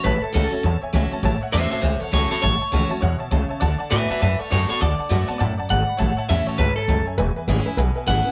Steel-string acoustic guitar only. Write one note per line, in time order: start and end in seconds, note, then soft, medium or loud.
0.04 0.62 A2 medium
0.33 0.51 E3 loud
0.33 0.51 A3 medium
0.33 0.51 C#4 loud
0.33 0.50 F#4 loud
0.51 0.64 C#4 medium
0.51 0.63 F#4 medium
0.63 1.21 E2 medium
0.93 1.11 E3 medium
0.93 1.11 A3 loud
0.93 1.11 C#4 medium
0.93 1.10 F#4 loud
1.11 1.23 C#4 soft
1.11 1.23 F#4 medium
1.23 1.81 A2 medium
1.53 1.71 E3 medium
1.53 1.71 A3 loud
1.53 1.72 C#4 loud
1.53 1.70 F#4 loud
1.71 1.84 C#4 medium
1.71 1.83 F#4 medium
2.12 2.30 E3 medium
2.12 2.30 A3 medium
2.12 2.31 C#4 medium
2.12 2.29 F#4 loud
2.30 2.43 C#4 soft
2.30 2.42 F#4 medium
2.42 3.00 A2 medium
2.72 2.90 E3 medium
2.72 2.90 A3 loud
2.72 2.91 C#4 loud
2.72 2.89 F#4 loud
2.90 3.03 C#4 medium
2.90 3.02 F#4 medium
3.02 3.31 B2 medium
3.31 3.60 C#3 medium
3.61 3.89 D3 medium
3.90 4.08 D3 medium
3.90 4.09 A3 medium
3.90 4.09 B3 loud
3.90 4.08 F#4 loud
4.09 4.21 B3 medium
4.09 4.21 F#4 medium
4.20 4.78 A2 medium
4.51 4.68 D3 medium
4.51 4.69 A3 medium
4.51 4.69 B3 medium
4.51 4.68 F#4 loud
4.69 4.81 B3 soft
4.69 4.80 F#4 medium
4.80 5.08 D3 medium
5.09 5.27 D3 medium
5.09 5.28 A3 medium
5.09 5.28 B3 loud
5.09 5.27 F#4 loud
5.28 5.40 B3 medium
5.28 5.39 F#4 medium
5.40 5.69 F#2 medium
5.69 5.98 G#2 medium
5.98 6.56 A2 medium
6.29 6.58 E3 medium
6.29 6.58 A3 medium
6.29 6.58 C#4 loud
6.29 6.58 F#4 loud
6.58 6.87 G#2 medium
6.89 7.17 F#2 medium
7.18 7.75 E2 medium
7.48 7.65 E3 medium
7.48 7.66 G#3 medium
7.48 7.66 C#4 loud
7.48 7.64 E4 loud
7.65 7.78 C#4 soft
7.65 7.77 E4 medium
7.78 8.32 B2 medium
8.06 8.24 E3 medium
8.06 8.25 G#3 medium
8.06 8.25 C#4 loud
8.06 8.23 E4 loud
8.24 8.32 C#4 soft
8.24 8.32 E4 medium